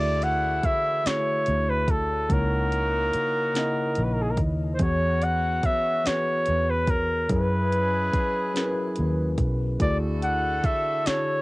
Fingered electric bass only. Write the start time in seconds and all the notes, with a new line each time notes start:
Already playing: D2
0.64 muted fingered electric bass stroke
1.06 muted fingered electric bass stroke
1.48 D2
2.31 C#2
3.14 muted fingered electric bass stroke
3.98 A#1
4.38 D#2
4.81 E2
5.64 muted fingered electric bass stroke
6.07 muted fingered electric bass stroke
6.48 E2
7.31 F#2
8.14 muted fingered electric bass stroke
8.99 D#2
9.39 B1
9.81 D2
10.64 muted fingered electric bass stroke
11.07 muted fingered electric bass stroke